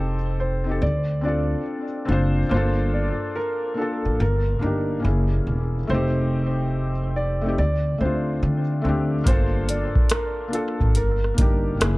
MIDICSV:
0, 0, Header, 1, 5, 480
1, 0, Start_track
1, 0, Key_signature, -2, "minor"
1, 0, Tempo, 845070
1, 1423, Time_signature, 4, 2, 24, 8
1, 6804, End_track
2, 0, Start_track
2, 0, Title_t, "Upright piano"
2, 0, Program_c, 0, 0
2, 0, Note_on_c, 0, 72, 97
2, 201, Note_off_c, 0, 72, 0
2, 227, Note_on_c, 0, 72, 69
2, 442, Note_off_c, 0, 72, 0
2, 467, Note_on_c, 0, 74, 77
2, 682, Note_off_c, 0, 74, 0
2, 709, Note_on_c, 0, 74, 67
2, 923, Note_off_c, 0, 74, 0
2, 1427, Note_on_c, 0, 72, 84
2, 1642, Note_off_c, 0, 72, 0
2, 1668, Note_on_c, 0, 74, 61
2, 1883, Note_off_c, 0, 74, 0
2, 1907, Note_on_c, 0, 70, 82
2, 2145, Note_off_c, 0, 70, 0
2, 2146, Note_on_c, 0, 69, 68
2, 2362, Note_off_c, 0, 69, 0
2, 2390, Note_on_c, 0, 70, 76
2, 2604, Note_off_c, 0, 70, 0
2, 2629, Note_on_c, 0, 70, 68
2, 2843, Note_off_c, 0, 70, 0
2, 3351, Note_on_c, 0, 72, 92
2, 4044, Note_off_c, 0, 72, 0
2, 4068, Note_on_c, 0, 74, 74
2, 4283, Note_off_c, 0, 74, 0
2, 4309, Note_on_c, 0, 74, 76
2, 4523, Note_off_c, 0, 74, 0
2, 4548, Note_on_c, 0, 72, 70
2, 4763, Note_off_c, 0, 72, 0
2, 5268, Note_on_c, 0, 72, 87
2, 5483, Note_off_c, 0, 72, 0
2, 5507, Note_on_c, 0, 74, 66
2, 5723, Note_off_c, 0, 74, 0
2, 5747, Note_on_c, 0, 70, 78
2, 5985, Note_off_c, 0, 70, 0
2, 5986, Note_on_c, 0, 69, 68
2, 6202, Note_off_c, 0, 69, 0
2, 6227, Note_on_c, 0, 70, 78
2, 6443, Note_off_c, 0, 70, 0
2, 6467, Note_on_c, 0, 70, 69
2, 6682, Note_off_c, 0, 70, 0
2, 6804, End_track
3, 0, Start_track
3, 0, Title_t, "Felt piano"
3, 0, Program_c, 1, 0
3, 0, Control_c, 1, 64, 127
3, 0, Note_on_c, 1, 60, 91
3, 0, Note_on_c, 1, 63, 90
3, 0, Note_on_c, 1, 67, 83
3, 0, Note_on_c, 1, 69, 104
3, 75, Note_off_c, 1, 60, 0
3, 81, Note_off_c, 1, 63, 0
3, 88, Note_off_c, 1, 67, 0
3, 95, Note_off_c, 1, 69, 0
3, 364, Note_on_c, 1, 60, 66
3, 378, Note_on_c, 1, 63, 63
3, 391, Note_on_c, 1, 67, 63
3, 404, Note_on_c, 1, 69, 76
3, 456, Note_off_c, 1, 60, 0
3, 463, Note_off_c, 1, 63, 0
3, 469, Note_off_c, 1, 67, 0
3, 471, Control_c, 1, 64, 0
3, 476, Note_off_c, 1, 69, 0
3, 576, Control_c, 1, 64, 127
3, 688, Note_on_c, 1, 60, 64
3, 701, Note_on_c, 1, 62, 64
3, 713, Note_on_c, 1, 65, 62
3, 727, Note_on_c, 1, 69, 74
3, 1036, Note_off_c, 1, 60, 0
3, 1043, Note_off_c, 1, 62, 0
3, 1049, Note_off_c, 1, 65, 0
3, 1056, Note_off_c, 1, 69, 0
3, 1166, Note_on_c, 1, 60, 81
3, 1179, Note_on_c, 1, 62, 80
3, 1192, Note_on_c, 1, 65, 83
3, 1205, Note_on_c, 1, 72, 93
3, 1357, Note_off_c, 1, 60, 0
3, 1364, Note_off_c, 1, 62, 0
3, 1370, Note_off_c, 1, 65, 0
3, 1377, Note_off_c, 1, 72, 0
3, 1415, Note_on_c, 1, 58, 93
3, 1428, Note_on_c, 1, 62, 80
3, 1431, Control_c, 1, 64, 0
3, 1442, Note_on_c, 1, 65, 94
3, 1455, Note_on_c, 1, 69, 99
3, 1538, Control_c, 1, 64, 127
3, 1897, Note_off_c, 1, 58, 0
3, 1903, Note_off_c, 1, 62, 0
3, 1910, Note_off_c, 1, 65, 0
3, 1917, Note_off_c, 1, 69, 0
3, 2126, Note_on_c, 1, 58, 69
3, 2141, Note_on_c, 1, 62, 66
3, 2153, Note_on_c, 1, 65, 65
3, 2167, Note_on_c, 1, 69, 83
3, 2374, Note_off_c, 1, 58, 0
3, 2382, Note_off_c, 1, 62, 0
3, 2388, Note_off_c, 1, 65, 0
3, 2391, Control_c, 1, 64, 0
3, 2395, Note_off_c, 1, 69, 0
3, 2485, Control_c, 1, 64, 127
3, 2607, Note_on_c, 1, 58, 67
3, 2620, Note_on_c, 1, 62, 68
3, 2634, Note_on_c, 1, 63, 64
3, 2645, Note_on_c, 1, 67, 70
3, 2830, Note_off_c, 1, 58, 0
3, 2839, Note_on_c, 1, 58, 71
3, 2852, Note_on_c, 1, 61, 62
3, 2861, Note_off_c, 1, 62, 0
3, 2865, Note_on_c, 1, 64, 60
3, 2868, Note_off_c, 1, 63, 0
3, 2870, Control_c, 1, 64, 0
3, 2874, Note_off_c, 1, 67, 0
3, 2879, Note_on_c, 1, 68, 70
3, 2982, Control_c, 1, 64, 127
3, 3263, Note_off_c, 1, 58, 0
3, 3269, Note_off_c, 1, 61, 0
3, 3276, Note_off_c, 1, 64, 0
3, 3283, Note_off_c, 1, 68, 0
3, 3335, Note_on_c, 1, 57, 88
3, 3349, Note_on_c, 1, 60, 86
3, 3350, Control_c, 1, 64, 0
3, 3363, Note_on_c, 1, 63, 84
3, 3376, Note_on_c, 1, 67, 94
3, 3435, Control_c, 1, 64, 127
3, 3918, Note_off_c, 1, 57, 0
3, 3925, Note_off_c, 1, 60, 0
3, 3931, Note_off_c, 1, 63, 0
3, 3938, Note_off_c, 1, 67, 0
3, 4212, Note_on_c, 1, 57, 77
3, 4225, Note_on_c, 1, 60, 65
3, 4238, Note_on_c, 1, 63, 69
3, 4251, Note_on_c, 1, 67, 81
3, 4300, Note_off_c, 1, 57, 0
3, 4306, Note_off_c, 1, 60, 0
3, 4310, Control_c, 1, 64, 0
3, 4313, Note_off_c, 1, 63, 0
3, 4320, Note_off_c, 1, 67, 0
3, 4393, Control_c, 1, 64, 127
3, 4533, Note_on_c, 1, 57, 61
3, 4547, Note_on_c, 1, 60, 56
3, 4559, Note_on_c, 1, 62, 61
3, 4573, Note_on_c, 1, 65, 72
3, 4879, Note_off_c, 1, 57, 0
3, 4886, Note_off_c, 1, 60, 0
3, 4892, Note_off_c, 1, 62, 0
3, 4899, Note_off_c, 1, 65, 0
3, 5007, Note_on_c, 1, 57, 87
3, 5020, Note_on_c, 1, 60, 77
3, 5033, Note_on_c, 1, 62, 79
3, 5047, Note_on_c, 1, 67, 87
3, 5198, Note_off_c, 1, 57, 0
3, 5204, Note_off_c, 1, 60, 0
3, 5211, Note_off_c, 1, 62, 0
3, 5218, Note_off_c, 1, 67, 0
3, 5248, Note_on_c, 1, 58, 96
3, 5261, Note_on_c, 1, 62, 83
3, 5271, Control_c, 1, 64, 0
3, 5275, Note_on_c, 1, 65, 88
3, 5287, Note_on_c, 1, 69, 105
3, 5363, Control_c, 1, 64, 127
3, 5733, Note_off_c, 1, 58, 0
3, 5740, Note_off_c, 1, 62, 0
3, 5747, Note_off_c, 1, 65, 0
3, 5753, Note_off_c, 1, 69, 0
3, 5952, Note_on_c, 1, 58, 76
3, 5966, Note_on_c, 1, 62, 67
3, 5978, Note_on_c, 1, 65, 72
3, 5991, Note_on_c, 1, 69, 87
3, 6208, Note_off_c, 1, 58, 0
3, 6214, Note_off_c, 1, 62, 0
3, 6221, Note_off_c, 1, 65, 0
3, 6227, Note_off_c, 1, 69, 0
3, 6230, Control_c, 1, 64, 0
3, 6328, Control_c, 1, 64, 127
3, 6442, Note_on_c, 1, 58, 71
3, 6455, Note_on_c, 1, 62, 60
3, 6469, Note_on_c, 1, 63, 71
3, 6482, Note_on_c, 1, 67, 83
3, 6677, Note_off_c, 1, 58, 0
3, 6685, Note_on_c, 1, 58, 71
3, 6699, Note_off_c, 1, 62, 0
3, 6699, Note_on_c, 1, 61, 58
3, 6706, Note_off_c, 1, 63, 0
3, 6709, Control_c, 1, 64, 0
3, 6711, Note_on_c, 1, 64, 68
3, 6713, Note_off_c, 1, 67, 0
3, 6724, Note_on_c, 1, 68, 75
3, 6804, Note_off_c, 1, 58, 0
3, 6804, Note_off_c, 1, 61, 0
3, 6804, Note_off_c, 1, 64, 0
3, 6804, Note_off_c, 1, 68, 0
3, 6804, End_track
4, 0, Start_track
4, 0, Title_t, "Upright bass"
4, 0, Program_c, 2, 32
4, 0, Note_on_c, 2, 29, 94
4, 441, Note_off_c, 2, 29, 0
4, 464, Note_on_c, 2, 38, 96
4, 867, Note_off_c, 2, 38, 0
4, 1184, Note_on_c, 2, 30, 94
4, 1385, Note_off_c, 2, 30, 0
4, 1425, Note_on_c, 2, 31, 96
4, 1757, Note_off_c, 2, 31, 0
4, 2302, Note_on_c, 2, 33, 77
4, 2372, Note_off_c, 2, 33, 0
4, 2385, Note_on_c, 2, 31, 100
4, 2586, Note_off_c, 2, 31, 0
4, 2626, Note_on_c, 2, 31, 84
4, 2827, Note_off_c, 2, 31, 0
4, 2866, Note_on_c, 2, 30, 91
4, 3067, Note_off_c, 2, 30, 0
4, 3105, Note_on_c, 2, 28, 88
4, 3306, Note_off_c, 2, 28, 0
4, 3348, Note_on_c, 2, 29, 89
4, 4283, Note_off_c, 2, 29, 0
4, 4307, Note_on_c, 2, 38, 96
4, 4507, Note_off_c, 2, 38, 0
4, 4547, Note_on_c, 2, 38, 81
4, 4747, Note_off_c, 2, 38, 0
4, 4786, Note_on_c, 2, 50, 94
4, 4986, Note_off_c, 2, 50, 0
4, 5025, Note_on_c, 2, 38, 86
4, 5226, Note_off_c, 2, 38, 0
4, 5263, Note_on_c, 2, 31, 98
4, 5595, Note_off_c, 2, 31, 0
4, 6139, Note_on_c, 2, 33, 77
4, 6224, Note_off_c, 2, 33, 0
4, 6224, Note_on_c, 2, 31, 97
4, 6426, Note_off_c, 2, 31, 0
4, 6467, Note_on_c, 2, 31, 87
4, 6667, Note_off_c, 2, 31, 0
4, 6704, Note_on_c, 2, 30, 90
4, 6804, Note_off_c, 2, 30, 0
4, 6804, End_track
5, 0, Start_track
5, 0, Title_t, "Drums"
5, 5260, Note_on_c, 9, 36, 108
5, 5263, Note_on_c, 9, 42, 79
5, 5317, Note_off_c, 9, 36, 0
5, 5320, Note_off_c, 9, 42, 0
5, 5502, Note_on_c, 9, 42, 59
5, 5559, Note_off_c, 9, 42, 0
5, 5655, Note_on_c, 9, 36, 89
5, 5711, Note_off_c, 9, 36, 0
5, 5734, Note_on_c, 9, 42, 89
5, 5745, Note_on_c, 9, 37, 108
5, 5791, Note_off_c, 9, 42, 0
5, 5802, Note_off_c, 9, 37, 0
5, 5982, Note_on_c, 9, 42, 48
5, 6039, Note_off_c, 9, 42, 0
5, 6137, Note_on_c, 9, 36, 82
5, 6194, Note_off_c, 9, 36, 0
5, 6219, Note_on_c, 9, 42, 58
5, 6276, Note_off_c, 9, 42, 0
5, 6386, Note_on_c, 9, 37, 36
5, 6443, Note_off_c, 9, 37, 0
5, 6464, Note_on_c, 9, 42, 66
5, 6465, Note_on_c, 9, 36, 94
5, 6521, Note_off_c, 9, 42, 0
5, 6522, Note_off_c, 9, 36, 0
5, 6708, Note_on_c, 9, 42, 71
5, 6711, Note_on_c, 9, 37, 115
5, 6765, Note_off_c, 9, 42, 0
5, 6768, Note_off_c, 9, 37, 0
5, 6804, End_track
0, 0, End_of_file